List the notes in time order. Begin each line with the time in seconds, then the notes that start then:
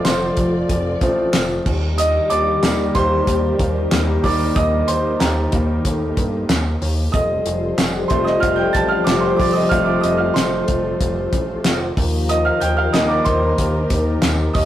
Already playing: F3 A3 C4 F4 A4 D5 D#5 F5 D6 D#6 F6
0.05 F1 C5 C6, snare, clap, closed hi-hat, tambourine
0.37 F1, kick, closed hi-hat
0.69 F1, kick, closed hi-hat
1.01 A1 F3 A3 C4, kick, closed hi-hat
1.33 F1, snare, clap, closed hi-hat, tambourine
1.66 D#2 D#3 G3 D#4 G4, kick, crash
1.98 D#5 D#6, closed hi-hat
2.30 D#2 D5 D6, closed hi-hat
2.62 D#2 D#3 G3 A#3, snare, clap, closed hi-hat, tambourine
2.95 D#2 C5 C6, kick, closed hi-hat
3.27 D#2, kick, closed hi-hat
3.59 D#2, kick, closed hi-hat
3.91 D#2 D#3 G3 A#3, snare, clap, closed hi-hat, tambourine
4.23 D#2 D#3 G3 A#3 D5 D6, kick, open hi-hat
4.56 D#2 D#5 D#6, kick, closed hi-hat
4.87 D#2 C5 C6, closed hi-hat
5.20 D#2 G4 A#5, snare, clap, closed hi-hat, tambourine
5.52 D#2 D#3 G3 A#3, kick, closed hi-hat
5.85 D#2 A3 A4, kick, closed hi-hat
6.17 G2, kick, closed hi-hat
6.49 D#2, snare, clap, closed hi-hat, tambourine
6.81 D#2, open hi-hat
7.12 F1 F3 G3 F4 G4 A4 C5 D#5 D#6, kick, closed hi-hat
7.46 F1, closed hi-hat
7.78 F1, snare, clap, closed hi-hat, tambourine
8.08 F1 C3 F3 A3 C5 C6, kick, closed hi-hat
8.24 D#5 D#6, snare
8.40 F1 F5 F6, kick, closed hi-hat
8.56 G5 G6
8.73 A1 A5 A6, kick, closed hi-hat
8.89 F5 F6
9.04 F1 C3 F3 A3 D5 D6, snare, clap, closed hi-hat, tambourine
9.20 C5 C6
9.36 F1 D5 D6, kick, open hi-hat
9.53 D#5 D#6
9.69 F1 C3 F3 A3 F5 F6, kick, closed hi-hat
9.85 D5 D6
10.01 F1 D#5 D#6, closed hi-hat
10.17 F5 F6
10.34 F1 C5 C6, snare, clap, closed hi-hat, tambourine
10.68 F1, kick, closed hi-hat
11.01 F1, kick, closed hi-hat
11.33 A1, kick, closed hi-hat
11.65 F1, snare, clap, closed hi-hat, tambourine
11.97 D#2 D#3 F3 D#4 F4 G4 A#4, kick, open hi-hat
12.29 D#5 D#6, closed hi-hat
12.45 F5 F6
12.61 D#2 G5 G6, closed hi-hat
12.77 F5 F6
12.93 D#2 D#3 G3 A#3 D#5 D#6, snare, clap, closed hi-hat, tambourine
13.08 D5 D6
13.25 D#2 C5 C6, kick, closed hi-hat
13.58 D#2, kick, closed hi-hat
13.90 D#2 D#3 D#4, kick, closed hi-hat
14.22 D#2, snare, clap, closed hi-hat, tambourine
14.53 D#2 D#5 D#6, kick, open hi-hat